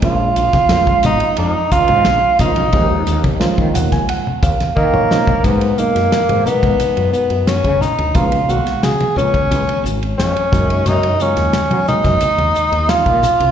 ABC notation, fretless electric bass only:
X:1
M:4/4
L:1/16
Q:1/4=89
K:G#dor
V:1 name="Fretless electric bass" clef=bass
A,,,2 A,,, z E,, z G,,, z E,, z C,, G,, A,,, z A,,, A,,, | D,, D,, D,,2 z D, D,,2 z2 D,, z D,2 z2 | G,,2 z F,, z G,, z G,, z F,, z F,,2 C, z =D,, | C,,2 B,,, z C, z C,,2 C,, z G,,,2 E,, z F,,2 |
F,,2 z D,, z F, z F,, z D,, z D,,2 A,, z ^B,,, |]